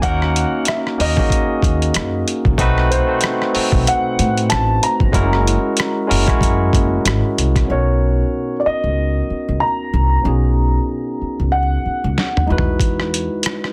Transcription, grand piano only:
0.03 F#5
0.68 E5
1.01 D#5
2.91 C5
3.88 F#5
4.50 A5
4.83 A#5
7.71 C#5
8.60 D5
8.66 D#5
9.60 A#5
11.52 F#5

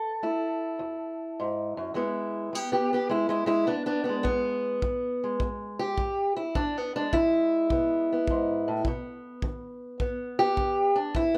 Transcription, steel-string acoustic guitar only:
Already playing: A2 A4
0.23 A3 E4
0.79 E2
1.40 G#2
1.77 F#2
1.94 E2 G#3 B3 E4
2.53 G#3 B3 G4
2.72 B3 G4
2.93 B3 G4
3.09 E2 G#3 E4
3.29 G#3 E4
3.46 G#3 E4
3.67 G#3 B3 D4
3.86 B3 D4
4.04 B3 D4
4.09 G#3
4.23 E2 B3
4.83 G#3
5.24 G#3
5.41 E2
5.79 G4
5.99 G#3
6.37 E4
6.56 E2 D4
6.77 B3
6.96 G#3 D4
7.13 E3 E4
7.71 B2 B3
8.12 B3
8.30 G#2
8.68 A2
8.86 B2 B3
9.44 D#3
10.01 F#2 B3
10.39 B3 G4
10.58 D#3
10.96 D4
11.15 A2 E4
11.34 B3

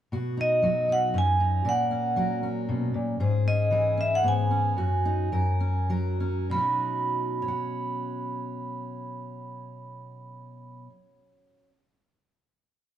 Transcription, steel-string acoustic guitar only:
0.12 B2 F#4
0.37 D#4
0.62 F#3 F#4
0.89 D#4
1.14 F#2 C#4
1.40 D#4
1.65 A#2 A#4
1.91 C#4
2.16 F#3 A#4
2.43 C#4
2.69 B2
2.94 A#2
3.20 G#2 G#4
3.47 C#4
3.71 E3 G#4
3.97 C#4
4.23 G#2 B3
4.51 C#4
4.77 F#2 F#4
5.05 D#4
5.32 F#2 A#4
5.60 C#4
5.90 F#3 A#4
6.20 C#4
6.50 B2 F#3
6.54 C#4 D#4
6.58 F#4
7.42 C#5
7.48 F#5

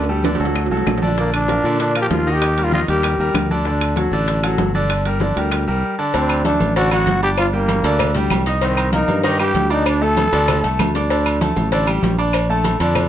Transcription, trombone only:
1.19 A#3
1.34 D4
1.81 D4
2.02 G4
2.12 F4
2.32 G4
2.64 F4
2.74 F4
2.89 G4
6.15 C4
6.46 D4
6.77 F#4
6.93 F#4
7.23 G4
7.39 F4
7.54 A#3
8.63 C4
8.93 D#4
9.25 G4
9.40 G4
9.72 D#4
9.87 D4
10.02 A4

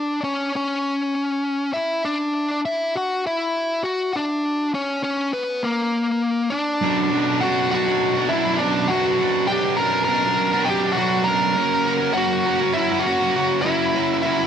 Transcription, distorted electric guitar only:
6.81 B1 F#2 B2 F#3 D4
7.11 F#2 B2 F#3 D4
7.26 B2 F#3 D4
7.42 B1 F#2 B2 F#3 D4
7.71 F#2 B2 F#3 D4
7.86 B2 F#3 D4
8.15 B2 F#3 D4
8.31 F#2 B2 F#3 D4
8.45 B2 F#3 D4
8.60 B1 F#2 B2 F#3 D4
8.91 F#2 B2 F#3 D4
9.21 B1 F#2 B2 F#3 D4
9.49 F#2 B2 F#3 D4
9.63 B2 F#3 D4
9.79 B1 F#2 B2 F#3 D4
10.08 F#2 B2 F#3 D4
10.23 B2 F#3 D4
10.52 B2 F#3 D4
10.67 F#2 B2 F#3 D4
10.82 B2 F#3 D4
10.95 B1 F#2 B2 F#3 D4
11.25 F#2 B2 F#3 D4
11.56 F#2 C#3 F#3 A#3 C#4 F#4
11.85 F#3 A#3 C#4 F#4
12.00 F#3 A#3 C#4 F#4
12.14 F#2 C#3 F#3 A#3 C#4 F#4
12.45 F#3 A#3 C#4 F#4
12.60 F#3 A#3 C#4 F#4
12.90 F#3 A#3 C#4 F#4
13.06 F#3 A#3 C#4 F#4
13.21 F#3 A#3 C#4 F#4
13.35 F#2 C#3 F#3 A#3 C#4 F#4
13.64 F#3 A#3 C#4 F#4
13.94 F#2 C#3 F#3 A#3 C#4 F#4
14.24 F#3 A#3 C#4 F#4
14.38 F#3 A#3 C#4 F#4

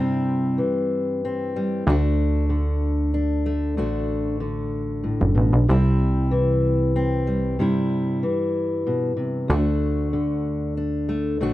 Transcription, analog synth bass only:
Already playing: G2
1.87 D2
3.79 A1
5.21 F#1
5.38 A1
5.53 B1
5.69 C2
7.59 G2
9.50 D2
11.40 A1

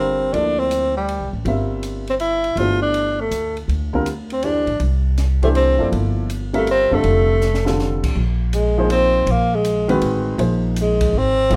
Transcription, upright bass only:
Already playing: G1
0.33 D2
1.21 C2
1.33 A1
1.45 G1
2.56 G1
3.31 D2
3.68 D2
4.67 A1
4.80 C2
5.79 F#1
5.92 G1
6.91 F#1
7.04 F1
8.03 A1
8.15 A#1
9.26 A#1
10.01 A1
10.38 A#1
11.13 G#1
11.50 A#1

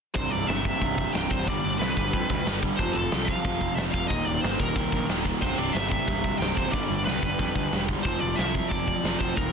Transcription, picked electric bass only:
0.16 C1
0.32 C1
0.49 G1
0.82 C1
1.15 C1
1.31 C1
1.47 G1
1.64 G1
1.80 C2
1.97 G1
2.14 F2
2.30 D2
2.47 G1
2.79 F1
2.96 F1
3.12 C2
3.45 F1
3.77 F1
3.94 F1
4.11 D#1
4.27 D#1
4.44 G1
4.60 D#1
4.76 C2
4.93 A#1
5.09 D#1
5.42 C1
5.58 C1
5.75 G1
6.08 C1
6.40 C1
6.57 C1
6.74 G1
6.90 G1
7.06 C2
7.23 G1
7.39 F2
7.55 D2
7.72 E1
8.05 F1
8.22 F1
8.39 C2
8.71 F1
9.04 F1
9.21 F1
9.38 D#1

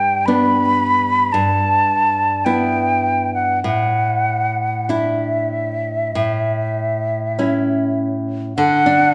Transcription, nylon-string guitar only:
Already playing: G2
0.28 B3 D4
1.34 G2
2.46 B3 E4
3.64 A2
4.89 D4 E4
6.15 A2
7.39 C#4 E4
8.58 D3
8.86 D4

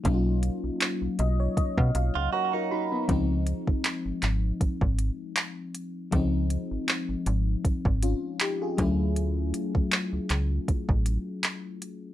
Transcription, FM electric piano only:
0.04 F#3 A#3 C#4 D#4
0.14 F4
1.19 D#5
1.40 C#5
1.57 D#5
1.78 F5
1.95 F5
2.16 F#5
2.33 A#4 C#5 A#5
2.54 F#4 A#4
2.71 D#4 F#4 B5
2.92 B3 D#4
3.08 F3 G#3 C4 D#4
6.11 F3 G#3 C4 D#4
8.03 C#4 F4
8.41 D#4 G4
8.62 F4 G#4
8.77 F#3 A3 C#4 E4

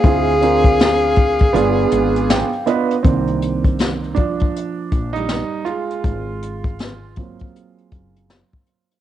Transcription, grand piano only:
0.04 C4 E4 F4 G#4
0.41 C4 D4 F4 A#4
1.53 B3 D4 F4 G#4
2.30 G5
2.66 B3 D4 F4 B4 D#5
3.03 D#3 A#3 C4 D4
4.15 F3 D4
5.13 G3 D#4
5.65 G#3 F4
7.17 F#3 A#3 C4 F4

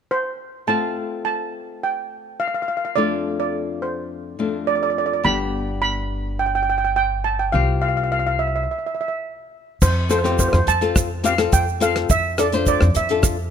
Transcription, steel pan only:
0.11 C5
0.68 A5
1.25 A5
1.83 G5
2.40 F5
2.48 F5
2.54 F5
2.62 F5
2.68 F5
2.77 F5
2.85 F5
2.96 D5
3.40 D5
3.82 C5
4.67 D5
4.75 D5
4.83 D5
4.90 D5
4.98 D5
5.06 D5
5.13 D5
5.25 B5
5.82 B5
6.39 G5
6.46 G5
6.55 G5
6.63 G5
6.70 G5
6.78 G5
6.85 G5
6.96 G5
7.24 A5
7.39 G5
7.52 F5
7.82 F5
7.89 F5
7.97 F5
8.04 F5
8.12 F5
8.19 F5
8.27 F5
8.39 E5
8.47 E5
8.56 E5
8.64 E5
8.71 E5
8.79 E5
8.86 E5
8.95 E5
9.01 E5
9.08 E5
9.82 C5
10.11 C5
10.19 C5
10.25 C5
10.32 C5
10.40 C5
10.48 C5
10.55 C5
10.68 A5
11.26 F5
11.53 G5
11.82 F5
12.11 E5
12.40 D5
12.68 D5
12.97 E5

